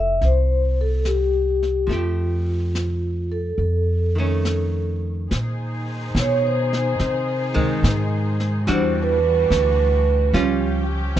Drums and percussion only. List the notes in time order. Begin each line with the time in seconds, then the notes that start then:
0.21 brush sweep, snare
1.05 snare, hi-hat pedal
1.63 snare
1.91 brush sweep, snare
2.75 snare, hi-hat pedal
3.59 brush sweep
4.45 snare, hi-hat pedal
5.31 brush sweep, snare
6.16 snare, hi-hat pedal
6.73 snare
6.99 brush sweep, snare
7.56 kick
7.84 snare, hi-hat pedal
8.40 snare
8.67 brush sweep, snare
9.52 snare, hi-hat pedal
10.34 brush sweep, snare